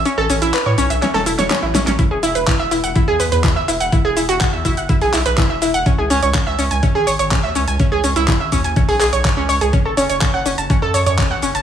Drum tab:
HH |x-oxx-oxxooxx-ox|x-oxx-oxx-oxx-ox|x-oxx-oxxooxx-ox|x-oxx-oxx-oxx-ox|
SH |x-xxx-xxx-xxx-xx|x-xxx-xxx-xxx-xx|x-xxx-xxx-xxx-xx|x-xxx-xxx-xxx-xx|
CP |----x-------x---|----x-------x---|----x-----x-x---|----x-------x---|
SD |--------oo-oo-oo|----------------|----------------|----------------|
BD |----------------|o---o---o---o---|o---o-o-o---o---|o---o---o---o---|

HH |x-oxx-oxxooxx-ox|x-oxx-oxx-oxx-ox|
SH |x-xxx-xxx-xxx-xx|x-xxx-xxx-xxx-xx|
CP |----x-----x-x---|----x-------x---|
SD |----------------|----------------|
BD |o---o-o-o---o---|o---o---o---o---|